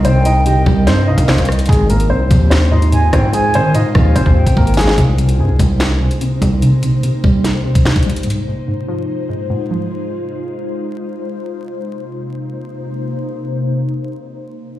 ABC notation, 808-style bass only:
X:1
M:4/4
L:1/16
Q:1/4=146
K:Cm
V:1 name="808-style bass" clef=bass
C,,6 C,,2 G,,3 C,,2 C,,3 | A,,,4 C,,2 E,,8 A,,2- | A,,2 E,2 A,,2 E,,2 A,,, E,,2 A,,, A,,,4 | C,,4 G,, C,, C,,4- C,, z3 C,,2 |
z16 | z16 | z16 | z16 |
z16 |]